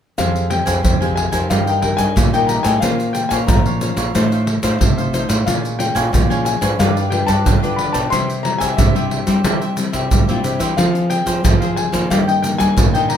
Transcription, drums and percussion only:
0.18 pandeiro medium
0.18 shaker medium
0.18 surdo soft
0.36 pandeiro soft
0.36 shaker soft
0.51 pandeiro medium
0.67 pandeiro medium
0.67 shaker medium
0.67 surdo soft
0.84 pandeiro medium
0.84 shaker medium
0.84 surdo medium
1.02 pandeiro soft
1.02 shaker soft
1.17 pandeiro medium
1.33 pandeiro medium
1.33 shaker medium
1.33 surdo soft
1.51 pandeiro medium
1.51 shaker medium
1.51 surdo medium
1.67 pandeiro soft
1.67 shaker soft
1.82 pandeiro medium
1.82 surdo soft
1.98 pandeiro medium
1.98 shaker medium
1.98 surdo soft
2.17 pandeiro medium
2.17 shaker medium
2.17 surdo medium
2.34 pandeiro soft
2.34 shaker soft
2.49 pandeiro medium
2.49 shaker medium
2.64 pandeiro medium
2.64 shaker medium
2.64 surdo soft
2.82 pandeiro medium
2.82 shaker medium
2.82 surdo medium
3.00 pandeiro soft
3.00 shaker soft
3.15 pandeiro medium
3.15 shaker medium
3.31 pandeiro medium
3.31 shaker medium
3.31 surdo soft
3.48 pandeiro medium
3.48 shaker medium
3.48 surdo loud
3.66 pandeiro soft
3.66 shaker soft
3.81 pandeiro soft
3.81 shaker medium
3.97 pandeiro medium
3.97 shaker medium
3.97 surdo soft
4.15 pandeiro medium
4.15 shaker medium
4.15 surdo medium
4.32 pandeiro soft
4.32 shaker soft
4.47 pandeiro medium
4.63 pandeiro medium
4.63 shaker medium
4.63 surdo soft
4.81 pandeiro medium
4.81 shaker medium
4.81 surdo medium
4.98 pandeiro soft
4.98 shaker soft
5.14 pandeiro medium
5.14 shaker medium
5.29 pandeiro medium
5.29 shaker medium
5.29 surdo soft
5.47 pandeiro medium
5.47 shaker medium
5.47 surdo medium
5.65 pandeiro soft
5.65 shaker soft
5.80 pandeiro medium
5.80 shaker medium
5.96 pandeiro medium
5.96 shaker medium
5.96 surdo soft
6.14 pandeiro medium
6.14 shaker medium
6.14 surdo medium
6.31 pandeiro soft
6.31 shaker soft
6.46 pandeiro medium
6.46 shaker medium
6.62 pandeiro medium
6.62 shaker medium
6.62 surdo soft
6.80 pandeiro medium
6.80 shaker medium
6.80 surdo medium
6.97 pandeiro soft
6.97 shaker soft
7.12 pandeiro medium
7.28 pandeiro medium
7.28 shaker medium
7.28 surdo soft
7.46 pandeiro medium
7.46 shaker medium
7.46 surdo medium
7.64 pandeiro soft
7.64 shaker soft
7.79 pandeiro medium
7.94 pandeiro medium
7.94 shaker medium
7.94 surdo soft
8.12 pandeiro medium
8.12 shaker medium
8.12 surdo medium
8.30 pandeiro soft
8.30 shaker soft
8.45 pandeiro medium
8.61 pandeiro medium
8.61 shaker medium
8.61 surdo soft
8.78 pandeiro medium
8.78 shaker medium
8.78 surdo medium
8.96 pandeiro soft
8.96 shaker soft
9.11 pandeiro soft
9.27 pandeiro medium
9.27 shaker medium
9.27 surdo soft
9.44 pandeiro medium
9.44 shaker medium
9.44 surdo medium
9.62 pandeiro soft
9.62 shaker soft
9.77 pandeiro medium
9.77 shaker medium
9.93 pandeiro medium
9.93 shaker medium
9.93 surdo soft
10.11 pandeiro medium
10.11 shaker medium
10.11 surdo medium
10.29 pandeiro soft
10.29 shaker soft
10.44 pandeiro medium
10.44 shaker medium
10.60 pandeiro medium
10.60 shaker medium
10.60 surdo soft
10.78 pandeiro medium
10.78 shaker medium
10.78 surdo soft
10.95 pandeiro soft
10.95 shaker soft
11.10 pandeiro medium
11.10 shaker medium
11.27 pandeiro medium
11.27 shaker medium
11.27 surdo soft
11.45 pandeiro medium
11.45 shaker medium
11.45 surdo loud
11.62 pandeiro soft
11.62 shaker soft
11.77 pandeiro medium
11.94 pandeiro medium
11.94 shaker medium
11.94 surdo soft
12.11 pandeiro medium
12.11 shaker medium
12.11 surdo medium
12.29 pandeiro soft
12.29 shaker soft
12.44 pandeiro medium
12.44 shaker medium
12.60 pandeiro medium
12.60 shaker medium
12.60 surdo soft
12.77 pandeiro medium
12.77 shaker medium
12.77 surdo medium
12.95 pandeiro soft
12.95 shaker soft
13.10 pandeiro medium

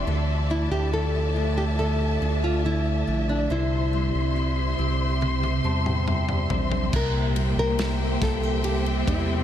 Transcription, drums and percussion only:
5.22 high tom soft
5.43 high tom soft
5.86 mid tom soft
6.08 mid tom medium
6.29 mid tom medium
6.50 floor tom medium
6.72 floor tom medium
6.93 kick medium
6.93 crash medium
7.36 ride medium
7.79 snare loud
7.79 ride medium
8.22 kick medium
8.22 snare soft
8.22 ride medium
8.64 ride medium
8.86 ride soft
9.07 kick medium
9.07 ride medium

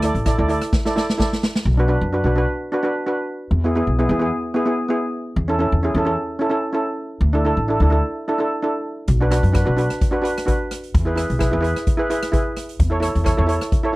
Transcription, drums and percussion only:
0.02 cross-stick loud
0.02 closed hi-hat medium
0.15 closed hi-hat medium
0.26 kick medium
0.26 cross-stick medium
0.26 closed hi-hat medium
0.49 closed hi-hat medium
0.62 cross-stick medium
0.62 closed hi-hat medium
0.73 kick loud
0.73 snare medium
0.86 snare medium
0.97 snare medium
1.09 snare medium
1.19 kick medium
1.19 snare loud
1.33 snare medium
1.43 snare loud
1.55 snare medium
9.08 kick loud
9.08 closed hi-hat medium
9.32 cross-stick loud
9.32 closed hi-hat loud
9.44 closed hi-hat medium
9.55 kick loud
9.55 cross-stick loud
9.55 closed hi-hat medium
9.78 closed hi-hat medium
9.90 cross-stick medium
9.90 closed hi-hat medium
10.01 kick loud
10.01 closed hi-hat medium
10.25 closed hi-hat medium
10.38 cross-stick loud
10.38 closed hi-hat medium
10.48 kick medium
10.48 closed hi-hat medium
10.71 cross-stick medium
10.71 closed hi-hat medium
10.84 closed hi-hat medium
10.95 kick loud
10.95 closed hi-hat medium
11.18 cross-stick medium
11.18 closed hi-hat medium
11.30 closed hi-hat medium
11.40 kick loud
11.40 cross-stick loud
11.40 closed hi-hat medium
11.64 closed hi-hat medium
11.76 cross-stick medium
11.76 closed hi-hat medium
11.87 kick loud
11.87 closed hi-hat medium
12.10 closed hi-hat medium
12.23 cross-stick loud
12.23 closed hi-hat medium
12.33 kick loud
12.33 closed hi-hat medium
12.57 cross-stick medium
12.57 closed hi-hat medium
12.69 closed hi-hat medium
12.80 kick loud
12.80 closed hi-hat medium
13.03 cross-stick loud
13.03 closed hi-hat loud
13.15 closed hi-hat medium
13.26 kick loud
13.26 cross-stick loud
13.26 closed hi-hat medium
13.49 closed hi-hat loud
13.61 cross-stick medium
13.61 closed hi-hat medium
13.72 kick loud
13.72 closed hi-hat medium

